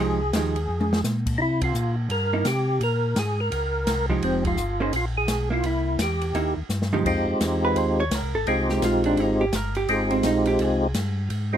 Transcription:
0.00 0.33 C2 medium
0.00 0.18 F3 medium
0.00 0.19 G#3 medium
0.00 0.19 D#4 medium
0.00 0.19 G4 medium
0.00 1.01 G#4 medium
0.33 0.68 D#2 medium
0.33 0.54 F3 soft
0.33 0.54 G#3 medium
0.33 0.55 D#4 medium
0.33 0.55 G4 medium
0.33 snare medium
0.33 hi-hat pedal medium
0.33 ride medium
0.56 ride soft
0.69 1.03 F2 medium
0.81 high tom medium
0.93 snare medium
1.04 1.38 A#2 medium
1.04 snare medium
1.04 hi-hat pedal medium
1.26 kick medium
1.26 crash medium
1.38 1.73 C3 medium
1.38 1.40 D#4 medium
1.38 1.61 E4 loud
1.61 1.96 F4 medium
1.61 kick medium
1.61 ride medium
1.74 2.09 A#2 medium
1.74 hi-hat pedal medium
2.10 2.44 G2 medium
2.10 2.47 A#4 loud
2.10 ride medium
2.33 2.45 A#3 medium
2.33 2.45 D#4 medium
2.33 2.45 E4 medium
2.45 2.79 C3 medium
2.45 2.83 G4 medium
2.45 snare medium
2.45 hi-hat pedal medium
2.45 ride medium
2.80 3.15 A#2 medium
2.80 3.19 A#4 loud
2.80 ride medium
3.16 3.50 G#2 medium
3.16 3.40 G#4 medium
3.16 snare medium
3.16 hi-hat pedal medium
3.16 ride medium
3.40 4.06 A#4 loud
3.52 3.86 C#2 medium
3.52 ride medium
3.87 4.21 C2 medium
3.87 snare medium
3.87 hi-hat pedal medium
3.87 ride medium
4.09 4.55 F3 medium
4.09 4.55 G#3 medium
4.09 4.56 D#4 medium
4.09 4.56 G4 medium
4.09 kick soft
4.22 4.56 F1 medium
4.22 4.44 C4 medium
4.22 ride medium
4.44 4.82 F4 medium
4.44 kick medium
4.44 ride medium
4.57 4.92 G1 medium
4.57 hi-hat pedal medium
4.80 4.92 A#3 medium
4.80 4.92 C#4 medium
4.80 4.93 D#4 medium
4.80 4.92 G#4 medium
4.80 4.93 C5 medium
4.93 5.27 A#1 medium
4.93 5.05 F4 medium
4.93 ride medium
5.17 5.49 G#4 medium
5.28 5.62 B1 medium
5.28 snare medium
5.28 hi-hat pedal medium
5.28 ride medium
5.50 5.96 A#3 medium
5.50 5.97 E4 medium
5.50 5.65 F4 medium
5.63 5.97 C2 medium
5.63 6.01 E4 medium
5.63 ride medium
5.99 6.33 E2 medium
5.99 6.54 G4 medium
5.99 snare medium
5.99 hi-hat pedal medium
5.99 ride medium
6.21 ride soft
6.34 6.55 D#2 medium
6.34 6.55 A#3 medium
6.34 6.55 D#4 medium
6.34 6.55 E4 medium
6.34 ride soft
6.56 6.63 D#2 soft
6.69 7.04 G2 medium
6.69 snare soft
6.69 hi-hat pedal medium
6.82 snare medium
6.93 7.04 F3 medium
6.93 7.04 G#3 medium
6.93 7.04 D#4 medium
6.93 7.05 G4 medium
6.93 floor tom medium
7.05 7.26 F2 medium
7.05 8.04 G#3 medium
7.05 8.04 C4 medium
7.05 8.04 D#4 medium
7.05 8.04 F4 medium
7.05 8.05 G4 medium
7.05 kick medium
7.05 crash medium
7.28 7.34 F2 soft
7.41 7.75 E2 medium
7.41 snare medium
7.41 hi-hat pedal medium
7.41 ride medium
7.65 7.78 B4 medium
7.75 8.10 D#2 medium
7.75 7.99 C5 medium
7.75 ride medium
8.00 8.15 C#5 medium
8.11 8.23 C#2 medium
8.11 snare medium
8.11 hi-hat pedal medium
8.11 ride medium
8.15 8.35 A#4 medium
8.23 8.35 C2 medium
8.34 8.46 G#1 medium
8.34 8.47 A4 medium
8.47 8.81 C2 medium
8.47 9.46 G#3 medium
8.47 9.46 C4 medium
8.47 9.46 D#4 medium
8.47 9.46 F4 medium
8.47 9.46 G4 medium
8.47 8.69 G#4 medium
8.47 ride soft
8.69 8.83 G4 medium
8.69 snare soft
8.82 9.16 A#1 medium
8.82 9.05 F4 medium
8.82 snare medium
8.82 hi-hat pedal medium
8.82 ride medium
9.04 9.20 D4 medium
9.04 ride soft
9.17 9.52 G#1 medium
9.17 9.41 D#4 medium
9.17 ride medium
9.41 9.55 G4 medium
9.53 9.87 G1 loud
9.53 9.76 A#4 loud
9.53 snare medium
9.53 hi-hat pedal medium
9.53 ride medium
9.75 9.90 G4 medium
9.75 ride soft
9.87 10.22 G#1 medium
9.87 10.87 G#3 medium
9.87 10.87 C4 medium
9.87 10.87 D#4 medium
9.87 10.88 F4 medium
9.87 10.88 G4 medium
9.87 10.11 G#4 medium
9.87 ride medium
10.11 10.24 C4 medium
10.11 ride soft
10.23 10.58 A#1 medium
10.23 10.47 D#4 medium
10.23 snare medium
10.23 hi-hat pedal medium
10.23 ride medium
10.46 10.62 G4 medium
10.46 ride medium
10.59 10.94 C2 medium
10.59 11.31 G#4 medium
10.59 ride medium
10.94 11.29 G2 medium
10.94 snare medium
10.94 hi-hat pedal medium
10.94 ride medium
11.30 11.57 G#2 medium
11.30 ride medium
11.53 11.57 G#3 medium
11.53 11.57 C4 medium
11.53 11.57 D#4 medium
11.53 11.57 F4 medium
11.53 11.57 G4 medium

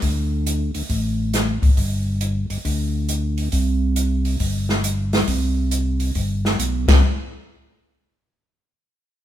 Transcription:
0.02 0.71 D2 medium
0.02 kick soft
0.02 open hi-hat soft
0.47 closed hi-hat medium
0.74 0.83 D2 soft
0.74 open hi-hat soft
0.89 1.58 A1 medium
0.89 kick soft
0.89 open hi-hat soft
1.34 snare soft
1.34 closed hi-hat medium
1.62 1.70 A1 soft
1.62 kick medium
1.62 open hi-hat soft
1.77 2.46 G1 medium
1.77 kick soft
1.77 open hi-hat soft
2.21 closed hi-hat medium
2.50 2.58 G1 soft
2.50 open hi-hat soft
2.65 3.49 D2 medium
2.65 kick soft
2.65 open hi-hat soft
3.09 closed hi-hat medium
3.38 open hi-hat soft
3.52 4.36 C2 medium
3.52 kick soft
3.52 open hi-hat medium
3.96 closed hi-hat medium
4.25 open hi-hat soft
4.40 5.24 G1 medium
4.40 kick soft
4.40 open hi-hat soft
4.69 snare soft
4.84 closed hi-hat medium
5.13 snare medium
5.13 open hi-hat soft
5.28 6.11 C2 medium
5.28 kick soft
5.28 open hi-hat medium
5.71 closed hi-hat medium
6.00 open hi-hat soft
6.15 6.56 G1 medium
6.15 kick soft
6.15 open hi-hat soft
6.45 snare soft
6.59 6.86 B1 medium
6.59 closed hi-hat medium
6.88 7.02 C2 medium
6.88 kick medium
6.88 snare medium
6.88 crash medium

